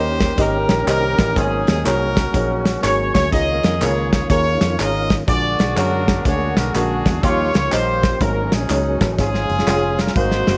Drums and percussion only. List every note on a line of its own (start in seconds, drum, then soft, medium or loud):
0.20 kick loud
0.20 snare loud
0.20 closed hi-hat medium
0.20 tambourine medium
0.38 kick loud
0.38 closed hi-hat medium
0.38 tambourine medium
0.69 snare loud
0.69 closed hi-hat medium
0.69 tambourine medium
0.87 clap loud
0.87 closed hi-hat medium
0.87 tambourine medium
1.18 kick loud
1.18 snare loud
1.18 closed hi-hat medium
1.18 tambourine medium
1.36 kick loud
1.36 closed hi-hat loud
1.36 tambourine medium
1.67 snare loud
1.67 closed hi-hat medium
1.67 tambourine medium
1.86 clap loud
1.86 closed hi-hat loud
1.86 tambourine loud
2.17 kick loud
2.17 snare loud
2.17 closed hi-hat medium
2.17 tambourine medium
2.34 kick loud
2.34 closed hi-hat medium
2.34 tambourine medium
2.65 snare loud
2.65 closed hi-hat medium
2.65 tambourine medium
2.84 clap medium
2.84 closed hi-hat loud
2.84 tambourine loud
3.15 kick medium
3.15 snare loud
3.15 closed hi-hat medium
3.15 tambourine medium
3.32 kick loud
3.32 closed hi-hat medium
3.32 tambourine medium
3.63 snare loud
3.63 closed hi-hat medium
3.63 tambourine medium
3.82 clap loud
3.82 closed hi-hat loud
3.82 tambourine loud
4.13 kick loud
4.13 snare loud
4.13 closed hi-hat medium
4.13 tambourine medium
4.30 kick loud
4.30 closed hi-hat loud
4.30 tambourine medium
4.61 snare loud
4.61 closed hi-hat medium
4.61 tambourine medium
4.79 clap loud
4.79 closed hi-hat loud
4.79 tambourine medium
5.10 kick medium
5.10 snare loud
5.10 closed hi-hat medium
5.10 tambourine medium
5.28 kick loud
5.28 closed hi-hat medium
5.28 tambourine medium
5.59 snare loud
5.59 closed hi-hat medium
5.59 tambourine medium
5.77 clap loud
5.77 closed hi-hat loud
5.77 tambourine loud
6.08 kick loud
6.08 snare loud
6.08 closed hi-hat medium
6.08 tambourine medium
6.25 kick loud
6.25 closed hi-hat loud
6.25 tambourine medium
6.57 snare loud
6.57 closed hi-hat medium
6.57 tambourine medium
6.74 clap loud
6.74 closed hi-hat loud
6.74 tambourine medium
7.06 kick medium
7.06 snare loud
7.06 closed hi-hat medium
7.06 tambourine medium
7.23 kick loud
7.23 closed hi-hat loud
7.23 tambourine medium
7.54 snare loud
7.54 closed hi-hat medium
7.54 tambourine medium
7.72 clap loud
7.72 closed hi-hat loud
7.72 tambourine loud
8.03 kick loud
8.03 snare loud
8.03 closed hi-hat medium
8.03 tambourine medium
8.21 kick loud
8.21 closed hi-hat medium
8.21 tambourine medium
8.52 snare loud
8.52 closed hi-hat medium
8.52 tambourine medium
8.70 clap loud
8.70 closed hi-hat loud
8.70 tambourine loud
9.01 kick loud
9.01 snare loud
9.01 closed hi-hat medium
9.01 tambourine medium
9.19 kick loud
9.19 snare medium
9.19 tambourine medium
9.34 snare medium
9.50 tambourine medium
9.59 snare medium
9.67 snare medium
9.67 clap loud
9.67 tambourine loud
9.99 snare medium
9.99 tambourine medium
10.07 snare medium
10.16 kick loud
10.16 tambourine medium
10.32 snare medium
10.47 snare medium
10.47 tambourine medium